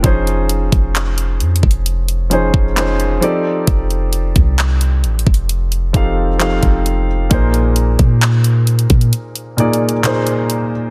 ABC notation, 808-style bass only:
X:1
M:4/4
L:1/16
Q:1/4=66
K:Fdor
V:1 name="808-style bass" clef=bass
F,,,3 F,,,3 F,, F,,,4 F,,,3 z2 | F,,,3 C,,3 =A,,, F,,,3 F,,,3 F,,,3 | B,,,3 B,,4 B,, z8 |]